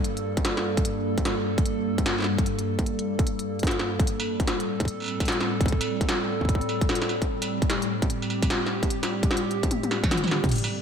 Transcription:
Already playing: ambient pad G2 G3 A#3 A4
0.04 closed hi-hat
0.17 closed hi-hat
0.37 kick, closed hi-hat
0.45 snare, closed hi-hat
0.57 snare
0.77 kick, closed hi-hat
0.85 closed hi-hat
1.18 kick, closed hi-hat
1.25 snare, closed hi-hat
1.58 kick, closed hi-hat
1.66 closed hi-hat
1.98 kick, closed hi-hat
2.06 snare, closed hi-hat
2.18 snare
2.20 snare
2.22 snare
2.24 snare
2.38 kick, closed hi-hat
2.46 closed hi-hat
2.59 closed hi-hat
2.79 kick, closed hi-hat
2.86 closed hi-hat
2.99 closed hi-hat
3.19 kick, closed hi-hat
3.27 closed hi-hat
3.39 closed hi-hat
3.59 kick, closed hi-hat
3.64 snare, closed hi-hat
3.67 closed hi-hat
3.79 snare
4.00 kick, closed hi-hat
4.07 ambient pad A2 G3 C4 A4, closed hi-hat
4.20 struck metal
4.40 kick, closed hi-hat
4.47 snare, closed hi-hat
4.60 closed hi-hat
4.80 kick, closed hi-hat
4.85 kick, closed hi-hat
5.00 struck metal
5.02 struck metal
5.04 struck metal
5.06 struck metal
5.08 struck metal
5.20 kick, closed hi-hat, struck metal
5.25 snare, closed hi-hat
5.28 closed hi-hat
5.32 closed hi-hat
5.41 snare
5.61 kick, closed hi-hat
5.66 kick, closed hi-hat
5.72 kick
5.81 closed hi-hat, struck metal
6.01 kick, closed hi-hat
6.09 snare, closed hi-hat
6.41 kick
6.45 kick, closed hi-hat
6.49 kick
6.55 kick
6.61 closed hi-hat
6.69 struck metal
6.81 kick, closed hi-hat
6.89 snare, struck metal
6.95 closed hi-hat
7.02 snare, struck metal
7.09 struck metal
7.22 kick, closed hi-hat
7.29 ambient pad G4
7.42 closed hi-hat, struck metal
7.62 kick, closed hi-hat
7.70 snare, closed hi-hat
7.82 closed hi-hat
8.02 kick, closed hi-hat
8.10 closed hi-hat
8.22 struck metal
8.30 struck metal
8.42 kick, closed hi-hat, struck metal
8.50 snare, closed hi-hat
8.66 snare
8.83 kick, closed hi-hat
8.90 closed hi-hat
9.03 snare, closed hi-hat, struck metal
9.23 kick, closed hi-hat
9.31 snare
9.37 closed hi-hat
9.51 closed hi-hat
9.63 kick, closed hi-hat
9.71 closed hi-hat, high tom
9.83 closed hi-hat, high tom
9.91 snare, struck metal
10.04 kick, closed hi-hat, mid tom, struck metal
10.11 snare, closed hi-hat, mid tom, struck metal
10.17 closed hi-hat
10.24 mid tom, struck metal
10.28 snare, struck metal
10.44 kick, closed hi-hat, mid tom
10.49 ambient pad G2 G3 A#3 A4, closed hi-hat
10.52 closed hi-hat, crash
10.56 closed hi-hat
10.58 closed hi-hat
10.64 struck metal

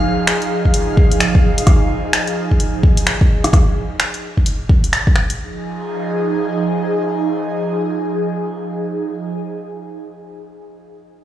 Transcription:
Already playing: analog synth pad F3 D#4 G#4, synth texture F5
0.27 finger snap, closed hi-hat
0.42 closed hi-hat
0.65 kick
0.74 closed hi-hat
0.97 kick
1.12 closed hi-hat
1.20 finger snap, closed hi-hat
1.35 kick
1.58 closed hi-hat
1.67 kick, cross-stick, closed hi-hat
2.13 finger snap, closed hi-hat
2.27 closed hi-hat
2.51 kick
2.60 closed hi-hat
2.83 kick
2.97 closed hi-hat
3.07 finger snap, closed hi-hat
3.21 kick
3.44 cross-stick, closed hi-hat
3.53 kick, cross-stick, closed hi-hat
4.00 finger snap, closed hi-hat
4.14 closed hi-hat
4.37 kick
4.46 closed hi-hat
4.69 kick
4.84 closed hi-hat
4.93 finger snap, closed hi-hat
5.07 kick
5.16 finger snap
5.30 closed hi-hat
5.39 analog synth pad F3 D#4 G#4

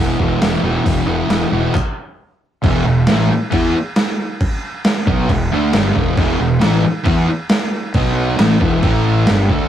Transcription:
Already playing: fingered electric bass E1, distorted electric guitar E2
0.00 distorted electric guitar B2 E3
0.19 fingered electric bass E1, distorted electric guitar E2 B2 E3, kick
0.41 fingered electric bass E1, distorted electric guitar E2 B2 E3, snare, open hi-hat
0.62 fingered electric bass E1, distorted electric guitar E2 B2 E3
0.84 fingered electric bass E1, distorted electric guitar E2 B2 E3, kick, open hi-hat
1.06 fingered electric bass E1, distorted electric guitar E2 B2 E3
1.27 fingered electric bass E1, distorted electric guitar E2 B2 E3, snare, open hi-hat
1.51 fingered electric bass E1, distorted electric guitar E2 B2 E3
1.75 kick, clap
2.62 fingered electric bass E1, distorted electric guitar E2 B2 E3, kick, crash
2.86 fingered electric bass E1, distorted electric guitar E2 B2
3.07 fingered electric bass A1, distorted electric guitar A2 E3 A3, snare, crash
3.19 snare
3.29 muted distorted electric guitar stroke, muted fingered electric bass stroke
3.51 fingered electric bass E2, distorted electric guitar E3 B3 E4, kick, crash
3.96 snare, crash
4.41 kick, crash
4.85 snare, crash
4.97 snare
5.07 fingered electric bass B1, distorted electric guitar B2 F#3 B3, kick
5.29 fingered electric bass E1, distorted electric guitar E2 B2, kick, crash
5.52 fingered electric bass D2, distorted electric guitar D3 A3 D4
5.73 fingered electric bass G1, distorted electric guitar G2 D3 G3, snare, crash
5.95 fingered electric bass E1, distorted electric guitar E2 B2 E3, kick
6.17 fingered electric bass E1, distorted electric guitar E2 B2 E3, kick, crash
6.40 fingered electric bass E1, distorted electric guitar E2 B2
6.60 fingered electric bass A1, distorted electric guitar A2 E3 A3, snare, crash
6.83 muted distorted electric guitar stroke, muted fingered electric bass stroke
7.04 fingered electric bass E2, distorted electric guitar E3 B3 E4, kick, crash
7.49 snare, crash
7.94 fingered electric bass B1, distorted electric guitar B2 F#3 B3, kick, crash
8.38 fingered electric bass A1, distorted electric guitar A2 E3 A3, snare, crash
8.60 fingered electric bass E1, distorted electric guitar E2 B2 E3, kick
8.83 fingered electric bass A1, distorted electric guitar A2 E3 A3, kick, crash
9.26 fingered electric bass G1, distorted electric guitar G2 D3 G3, snare, crash
9.50 fingered electric bass D2, distorted electric guitar D3 A3 D4, kick

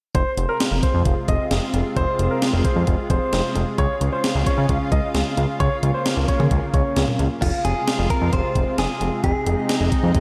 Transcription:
0.15 analog synth bass F1, analog synth pad C3 G#3 F4, grand piano C5, kick, closed hi-hat
0.37 analog synth bass F1, closed hi-hat
0.49 grand piano A#4
0.60 snare, closed hi-hat
0.71 analog synth bass F1
0.83 grand piano C5, kick, closed hi-hat
0.94 analog synth bass F2
1.05 analog synth bass F1, kick, closed hi-hat
1.28 analog synth bass F1, grand piano D#5, kick, closed hi-hat
1.51 analog synth bass F1, snare, closed hi-hat
1.74 analog synth bass F1, closed hi-hat
1.96 analog synth bass F1, grand piano C5, kick, closed hi-hat
2.19 analog synth bass F1, closed hi-hat
2.31 grand piano A#4
2.42 snare, closed hi-hat
2.53 analog synth bass F1
2.65 grand piano C5, kick, closed hi-hat
2.76 analog synth bass F2
2.87 analog synth bass F1, kick, closed hi-hat
3.10 analog synth bass F1, grand piano C5, kick, closed hi-hat
3.33 analog synth bass F1, snare, closed hi-hat
3.55 analog synth bass F1, closed hi-hat
3.78 analog synth bass C#2, analog synth pad C#3 F4, grand piano C#5, kick, closed hi-hat
4.01 analog synth bass C#2, closed hi-hat
4.12 grand piano C5
4.24 snare, closed hi-hat
4.35 analog synth bass C#2
4.46 grand piano C#5, kick, closed hi-hat
4.58 analog synth bass C#3
4.69 analog synth bass C#2, kick, closed hi-hat
4.92 analog synth bass C#2, grand piano D#5, kick, closed hi-hat
5.14 analog synth bass C#2, snare, closed hi-hat
5.37 analog synth bass C#2, closed hi-hat
5.60 analog synth bass C#2, analog synth pad C#3 A#3, grand piano C#5, kick, closed hi-hat
5.83 analog synth bass C#2, closed hi-hat
5.94 grand piano C5
6.06 snare, closed hi-hat
6.17 analog synth bass C#2
6.28 grand piano C#5, kick, closed hi-hat
6.40 analog synth bass C#3, mid tom
6.51 analog synth bass C#2, kick, closed hi-hat
6.74 analog synth bass C#2, grand piano C#5, kick, closed hi-hat
6.96 analog synth bass C#2, snare, closed hi-hat
7.08 mid tom
7.19 analog synth bass C#2, closed hi-hat
7.42 analog synth bass F1, analog synth pad C3 G#3 F4, clean electric guitar F4, kick, closed hi-hat, crash
7.65 analog synth bass F1, clean electric guitar G#4, closed hi-hat
7.88 snare, closed hi-hat
7.99 analog synth bass F1
8.10 clean electric guitar A#4, kick, closed hi-hat
8.21 analog synth bass F2
8.33 analog synth bass F1, clean electric guitar C5, kick, closed hi-hat
8.55 analog synth bass F1, kick, closed hi-hat
8.78 analog synth bass F1, clean electric guitar G#4, snare, closed hi-hat
9.01 analog synth bass F1, closed hi-hat
9.24 analog synth bass F1, analog synth pad D#4, clean electric guitar G#4, kick, closed hi-hat
9.46 analog synth bass F1, closed hi-hat
9.69 snare, closed hi-hat
9.81 analog synth bass F1
9.92 kick, closed hi-hat
10.03 analog synth bass F2
10.15 analog synth bass F1, kick, closed hi-hat

